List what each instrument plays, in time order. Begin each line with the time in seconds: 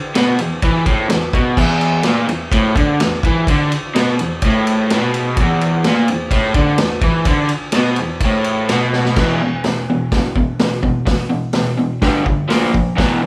0.15 overdriven electric guitar B2, snare, ride
0.39 overdriven electric guitar E2, ride
0.62 overdriven electric guitar E3, kick, ride
0.86 overdriven electric guitar A2, kick, ride
1.08 overdriven electric guitar E2, snare, ride
1.33 overdriven electric guitar B2, kick, ride
1.57 overdriven electric guitar E2, kick, crash
1.81 ride
2.03 overdriven electric guitar A#2, snare, ride
2.27 overdriven electric guitar E2, ride
2.52 overdriven electric guitar A2, kick, ride
2.76 overdriven electric guitar D3, kick, ride
3.00 overdriven electric guitar E2, snare, ride
3.23 overdriven electric guitar E3, kick, ride
3.47 overdriven electric guitar D3, kick, ride
3.72 ride
3.95 overdriven electric guitar B2, snare, ride
4.19 overdriven electric guitar E2, ride
4.42 overdriven electric guitar A2, kick, ride
4.67 ride
4.90 overdriven electric guitar B2, snare, ride
5.14 ride
5.37 overdriven electric guitar E2, kick, ride
5.61 ride
5.84 overdriven electric guitar A#2, snare, ride
6.08 overdriven electric guitar E2, ride
6.31 overdriven electric guitar A2, kick, ride
6.54 overdriven electric guitar D3, kick, ride
6.78 overdriven electric guitar E2, snare, ride
7.01 overdriven electric guitar E3, kick, ride
7.25 overdriven electric guitar D3, kick, ride
7.49 ride
7.72 overdriven electric guitar B2, snare, ride
7.96 overdriven electric guitar E2, ride
8.20 kick, ride
8.25 overdriven electric guitar A2
8.44 ride
8.69 overdriven electric guitar B2, snare, ride
8.93 snare
9.05 snare
9.16 overdriven electric guitar E2 B2, kick, snare, crash
9.20 overdriven electric guitar E3
9.42 overdriven electric guitar E2 B2
9.64 overdriven electric guitar E2 B2, snare, open hi-hat
9.90 overdriven electric guitar E2 B2
10.12 kick, snare, open hi-hat
10.16 overdriven electric guitar E2 B2
10.36 overdriven electric guitar E2 B2, kick
10.59 overdriven electric guitar E2 B2, snare, open hi-hat
10.83 overdriven electric guitar E2 B2, kick
11.06 overdriven electric guitar E2 B2, kick, snare, open hi-hat
11.30 overdriven electric guitar E2 B2
11.53 overdriven electric guitar E2 B2, snare, open hi-hat
11.78 overdriven electric guitar E2 B2
12.02 overdriven electric guitar G2 D3 G3, kick, snare, open hi-hat
12.24 overdriven electric guitar G2 D3, kick
12.48 overdriven electric guitar A#2 F3 A#3, snare, open hi-hat
12.73 overdriven electric guitar A#2 F3, kick
12.96 overdriven electric guitar E2 B2 E3, kick, snare, open hi-hat
13.23 overdriven electric guitar E2 B2